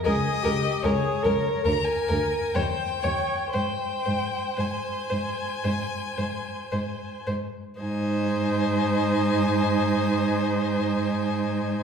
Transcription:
<<
  \new Staff \with { instrumentName = "Violin" } { \time 4/4 \key aes \major \tempo 4 = 59 ees''4 des''4 bes''16 aes''8. g''4 | g''4 aes''2~ aes''8 r8 | aes''1 | }
  \new Staff \with { instrumentName = "Violin" } { \time 4/4 \key aes \major bes'8 bes'8 bes'8 bes'8 bes'8 bes'8 des''8 des''8 | c''8 c''8 c''8 c''8 c''8 c''8 c''8 c''8 | c''1 | }
  \new Staff \with { instrumentName = "Viola" } { \time 4/4 \key aes \major aes'8 g'8 aes'8 bes'8 bes'4 c''8 des''8 | c''2.~ c''8 r8 | ees'1 | }
  \new Staff \with { instrumentName = "Cello" } { \clef bass \time 4/4 \key aes \major des,8 des,8 des,8 des,8 d,8 d,8 ees,8 ees,8 | aes,8 aes,8 aes,8 aes,8 aes,8 aes,8 aes,8 aes,8 | aes,1 | }
>>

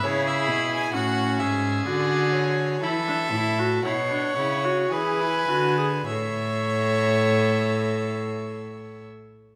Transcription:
<<
  \new Staff \with { instrumentName = "Violin" } { \time 3/4 \key a \major \tempo 4 = 56 cis''16 e''8 gis''16 fis''8 e''8 d''8 cis''8 | e''4 fis''4 gis''4 | e''2. | }
  \new Staff \with { instrumentName = "Violin" } { \time 3/4 \key a \major gis'4 fis'8 gis'4. | a'4 cis''4 b'4 | cis''2. | }
  \new Staff \with { instrumentName = "Viola" } { \time 3/4 \key a \major e'4 cis'4 fis'4 | e'16 d'16 e'16 fis'16 e'16 d'16 e'16 fis'16 gis'16 e'16 fis'16 gis'16 | a'2. | }
  \new Staff \with { instrumentName = "Cello" } { \clef bass \time 3/4 \key a \major cis8 b,8 a,8 gis,8 d4 | e8 a,8 b,8 cis8 e8 d8 | a,2. | }
>>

